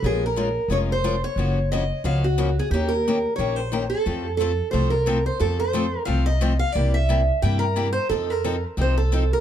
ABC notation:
X:1
M:4/4
L:1/16
Q:"Swing" 1/4=178
K:Bbm
V:1 name="Steel-string acoustic guitar"
A2 B6 d2 c4 d2- | d4 e4 f2 G4 A2 | =G2 B6 d2 c4 =A2- | =A4 A4 c2 B4 c2 |
=A2 c6 f2 e4 f2 | =d2 =e6 =g2 B4 c2 | =A2 B4 z2 c2 A4 B2 |]
V:2 name="Steel-string acoustic guitar"
[F,A,DFB]2 z2 [F,A,DFB] z3 [F,A,DFB]2 z2 [F,A,DFB] z3 | [D,F,B,DG]2 z2 [D,F,B,DG] z3 [D,F,B,DG]2 z2 [D,F,B,DG] z3 | [E,B,D=GB]2 z2 [E,B,DGB] z3 [E,B,DGB]2 z2 [E,B,DGB] z3 | [F,=A,CF=A]2 z2 [F,A,CFA] z3 [F,A,CFA]2 z2 [F,A,CFA] z3 |
[F,=A,CF=A]2 z2 [F,A,CFA] z3 [F,A,CFA]2 z2 [F,A,CFA] z3 | [C,=G,B,=E=G]2 z2 [C,G,B,EG] z3 [C,G,B,EG]2 z2 [C,G,B,EG] z3 | [F,CE=A]2 z2 [F,CEA] z3 [F,CEA]2 z2 [F,CEA] z3 |]
V:3 name="Upright bass" clef=bass
B,,,8 F,,,8 | G,,,8 D,,8 | E,,8 B,,,8 | F,,8 C,,8 |
F,,8 C,,8 | C,,8 =G,,8 | F,,8 C,,8 |]